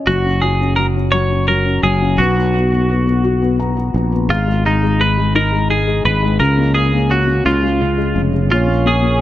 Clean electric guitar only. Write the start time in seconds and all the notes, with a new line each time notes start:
0.07 F#4
0.42 G#4
0.76 A#4
1.12 C#5
1.48 A#4
1.83 G#4
2.18 F#4
4.30 F4
4.66 D#4
5.01 B4
5.36 A#4
5.71 G#4
6.05 B4
6.40 A#4
6.75 G#4
7.11 F#4
7.46 F4
8.52 F4
8.87 G#4